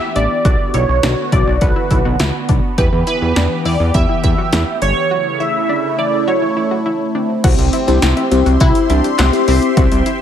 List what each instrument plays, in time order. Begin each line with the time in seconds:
Already playing: analog synth pad E3 B3 G4, analog polysynth E5
0.16 analog synth bass A1, synth arpeggio sound D4, analog polysynth D5, closed hi-hat
0.45 analog synth bass B1, analog synth pad D3 B3 F#4, synth arpeggio sound F#4, kick, closed hi-hat
0.74 analog synth bass B1, synth arpeggio sound E4, analog polysynth C#5, closed hi-hat
0.89 analog synth bass B1
1.03 analog synth bass B1, synth arpeggio sound D4, snare, closed hi-hat
1.32 analog synth bass B1, synth arpeggio sound E4, analog polysynth D5, kick, closed hi-hat
1.47 analog synth bass B1
1.61 analog synth bass B1, synth arpeggio sound F#4, analog polysynth B4, kick, closed hi-hat
1.76 synth arpeggio sound E4
1.91 analog synth bass B1, synth arpeggio sound E4, kick, closed hi-hat
2.05 analog synth bass B1, synth arpeggio sound F#4
2.20 analog synth bass C#2, synth arpeggio sound E4, snare, closed hi-hat
2.49 analog synth bass B1, synth arpeggio sound D4, kick, closed hi-hat
2.78 analog synth bass E2, analog synth pad E3 G4, synth arpeggio sound G4, analog polysynth B4, kick, closed hi-hat
2.93 analog synth bass E2
3.07 synth arpeggio sound E4, analog polysynth B4, closed hi-hat
3.22 analog synth bass E2
3.36 analog synth bass E2, synth arpeggio sound D4, snare, closed hi-hat
3.65 analog synth bass E2, synth arpeggio sound E4, analog polysynth D5, open hi-hat
3.80 analog synth bass E2
3.94 analog synth bass E2, synth arpeggio sound G4, analog polysynth E5, kick, closed hi-hat
4.09 synth arpeggio sound E4
4.24 analog synth bass E2, synth arpeggio sound E4, analog polysynth E5, kick, closed hi-hat
4.38 synth arpeggio sound F#4
4.53 analog synth bass E2, synth arpeggio sound E4, snare, closed hi-hat
4.82 analog synth bass G1, synth arpeggio sound D4, analog polysynth C#5, closed hi-hat
5.11 analog synth pad C#3 A3 E4, synth arpeggio sound F#4
5.40 synth arpeggio sound E4, analog polysynth E5
5.69 synth arpeggio sound D4
5.98 synth arpeggio sound E4, analog polysynth D5
6.28 synth arpeggio sound F#4, analog polysynth C#5
6.42 synth arpeggio sound E4
6.57 synth arpeggio sound E4
6.71 synth arpeggio sound F#4
6.86 synth arpeggio sound E4
7.15 analog polysynth C4, synth arpeggio sound D4
7.44 analog synth bass C2, fm electric piano C4 E4 G4 C5, synth arpeggio sound F#4, analog synth pad G4 E5 C6, kick, closed hi-hat, crash
7.59 analog synth bass C2, closed hi-hat
7.73 synth arpeggio sound E4, closed hi-hat
7.88 analog synth bass C2, fm electric piano C4 E4 G4 C5, synth arpeggio sound D4, closed hi-hat
8.02 analog synth bass C2, snare, closed hi-hat
8.17 synth arpeggio sound E4, closed hi-hat
8.31 analog synth bass C2, fm electric piano C4 E4 G4 C5, closed hi-hat
8.46 analog synth bass C2, synth arpeggio sound F#4, closed hi-hat
8.60 analog synth bass C2, analog polysynth E4, synth arpeggio sound F#4, kick, closed hi-hat
8.75 closed hi-hat
8.90 analog synth bass C2, analog polysynth D4, synth arpeggio sound E4, closed hi-hat
9.04 synth arpeggio sound G4, closed hi-hat
9.19 analog synth bass C2, analog polysynth C4, synth arpeggio sound F#4, snare, clap, closed hi-hat
9.33 fm electric piano C4 E4 G4 C5, closed hi-hat
9.48 analog synth bass C2, fm electric piano C4 E4 G4 C5, analog polysynth C4, synth arpeggio sound E4, open hi-hat
9.62 closed hi-hat
9.77 analog synth bass C2, fm electric piano C4 E4 G4 C5, synth arpeggio sound F#4, kick, closed hi-hat
9.92 analog synth bass C2, closed hi-hat
10.06 synth arpeggio sound E4, closed hi-hat